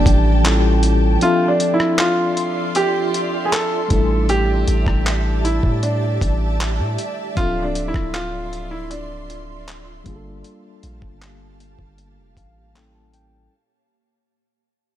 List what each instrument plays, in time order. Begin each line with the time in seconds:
Already playing: tine electric piano F3 G3 A#3 D4 A4, ambient pad A#3 G4 G5 A5, grand piano D4
0.06 808-style bass A1, kick, closed hi-hat
0.44 tine electric piano G3 C#4 E4 F4 A4, clap, closed hi-hat
0.83 closed hi-hat
1.19 tine electric piano F3 C4 D4 E5, ambient pad F4 D5 E5 C6, grand piano F4, closed hi-hat
1.24 tine electric piano A4
1.48 grand piano D4
1.60 closed hi-hat
1.74 grand piano E4
1.80 cross-stick
1.98 grand piano F4, clap, closed hi-hat
2.37 closed hi-hat
2.75 grand piano G4, closed hi-hat
3.14 closed hi-hat
3.45 grand piano G#4
3.52 grand piano A4, clap, closed hi-hat
3.88 808-style bass A1, tine electric piano G3 A3 D4 E4, ambient pad G4 D5 A5, kick, closed hi-hat
3.94 tine electric piano A4
4.29 grand piano G4, closed hi-hat
4.68 808-style bass A1, closed hi-hat
4.87 808-style bass A1, kick, cross-stick
5.06 clap, closed hi-hat
5.45 grand piano E4, closed hi-hat
5.63 808-style bass A2, kick
5.83 grand piano D4, closed hi-hat
6.21 808-style bass A1, kick, closed hi-hat
6.60 clap, closed hi-hat
6.80 808-style bass A2
6.98 closed hi-hat
7.35 808-style bass D1, tine electric piano F3 C4 D4 E5, grand piano F4, ambient pad F4 C6, kick, closed hi-hat
7.41 tine electric piano A4
7.63 grand piano D4
7.75 closed hi-hat
7.88 grand piano E4
7.94 808-style bass D1, kick, cross-stick
8.14 grand piano F4, clap, closed hi-hat
8.53 closed hi-hat
8.71 grand piano E4
8.90 grand piano D4, closed hi-hat
9.30 closed hi-hat
9.68 clap, closed hi-hat
10.04 808-style bass G1, tine electric piano G3 A#3 D4 F4, ambient pad A#3 G4 F5 A5, kick, closed hi-hat
10.09 tine electric piano G#4
10.16 tine electric piano A4
10.44 closed hi-hat
10.83 808-style bass A#1, closed hi-hat
11.02 808-style bass G1, kick
11.22 clap, closed hi-hat
11.60 closed hi-hat
11.79 808-style bass G1, kick
11.98 closed hi-hat
12.18 808-style bass F1
12.37 808-style bass A1, tine electric piano F5, kick, closed hi-hat
12.75 tine electric piano G3 A#3 C#4 E4 A4, clap, closed hi-hat
12.95 tine electric piano A5
13.14 tine electric piano G5, closed hi-hat